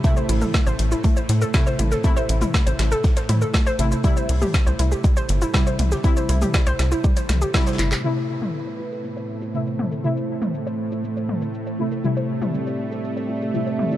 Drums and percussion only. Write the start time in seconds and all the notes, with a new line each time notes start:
0.04 kick, closed hi-hat, shaker
0.17 shaker
0.29 closed hi-hat, open hi-hat
0.42 mid tom, shaker
0.54 kick, snare, closed hi-hat, shaker
0.67 shaker
0.79 closed hi-hat
0.92 shaker
1.04 kick, closed hi-hat, shaker
1.17 shaker
1.29 snare, closed hi-hat
1.42 shaker
1.54 kick, snare, closed hi-hat, shaker
1.67 shaker
1.79 closed hi-hat, mid tom
1.91 snare, shaker
2.04 kick, closed hi-hat, shaker
2.17 shaker
2.29 closed hi-hat
2.41 closed hi-hat, mid tom, shaker
2.54 kick, snare, closed hi-hat, shaker
2.67 closed hi-hat, shaker
2.79 snare, closed hi-hat
2.92 shaker
3.04 kick, snare, closed hi-hat, shaker
3.17 snare, closed hi-hat, shaker
3.29 snare, closed hi-hat, mid tom
3.42 shaker
3.54 kick, snare, closed hi-hat, shaker
3.67 closed hi-hat, shaker
3.79 closed hi-hat
3.92 shaker
4.04 kick, closed hi-hat, shaker
4.17 shaker
4.29 closed hi-hat, open hi-hat
4.42 mid tom, shaker
4.54 kick, snare, closed hi-hat, shaker
4.67 shaker
4.79 closed hi-hat
4.92 shaker
5.04 kick, closed hi-hat, shaker
5.17 shaker
5.29 snare, closed hi-hat
5.42 shaker
5.54 kick, snare, closed hi-hat, shaker
5.67 shaker
5.79 closed hi-hat, mid tom
5.92 snare, shaker
6.04 kick, closed hi-hat, shaker
6.17 shaker
6.29 closed hi-hat
6.42 closed hi-hat, mid tom, shaker
6.54 kick, snare, closed hi-hat, shaker
6.67 closed hi-hat, shaker
6.79 snare, closed hi-hat
6.92 shaker
7.04 kick, shaker
7.17 closed hi-hat, shaker
7.29 snare, closed hi-hat, mid tom
7.42 shaker
7.54 kick, snare, closed hi-hat, shaker
7.60 snare, closed hi-hat
7.66 snare, closed hi-hat, shaker
7.73 snare, closed hi-hat
7.79 clap, closed hi-hat
7.92 clap, shaker
8.04 shaker
8.17 shaker
8.42 mid tom, shaker
8.54 shaker
8.67 shaker
8.92 shaker
9.04 shaker
9.17 shaker
9.42 shaker
9.54 shaker
9.67 shaker
9.79 mid tom
9.92 shaker
10.04 shaker
10.17 shaker
10.42 mid tom, shaker
10.54 shaker
10.67 shaker
10.92 shaker
11.04 shaker
11.17 shaker
11.29 mid tom
11.42 shaker
11.54 shaker
11.67 shaker
11.92 shaker
12.04 shaker
12.17 shaker
12.42 mid tom, shaker
12.54 shaker
12.67 shaker
12.92 shaker
13.04 shaker
13.17 shaker
13.42 shaker
13.54 shaker
13.67 shaker
13.79 mid tom
13.92 shaker